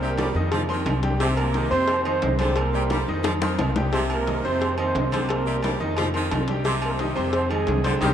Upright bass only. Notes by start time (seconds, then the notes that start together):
Already playing: C2
0.35 F2
0.85 C2
1.71 F2
2.23 C2
3.08 F2
3.59 C2
4.44 F2
4.95 C2
5.80 F2
6.31 C2
7.17 F2
7.67 C2
8.01 C2